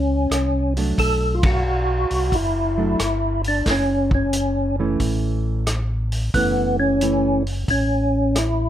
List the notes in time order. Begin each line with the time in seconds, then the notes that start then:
Already playing: C#2 C#4
0.30 C2, cross-stick, closed hi-hat
0.77 F#3 A3 D4, open hi-hat
0.98 B1 A4, kick, open hi-hat
1.35 F4
1.43 F#4, kick, ride
2.10 C2, open hi-hat
2.32 F#1 E4, kick, open hi-hat
2.78 F#3 A3 D4
2.99 G1, cross-stick, closed hi-hat
3.44 D4, open hi-hat
3.66 F#1, kick, snare, open hi-hat
3.70 C#4
4.11 C#4, kick
4.33 closed hi-hat
4.79 E3 A3 C#4
5.00 A1, kick, open hi-hat
5.67 cross-stick, closed hi-hat
6.12 open hi-hat
6.34 F#1 E3 A3 B3 C#4, kick, open hi-hat
6.80 C#4
7.01 E3 A3 C#4, closed hi-hat
7.47 open hi-hat
7.68 A1 C#4, kick, open hi-hat
8.36 E4, cross-stick, closed hi-hat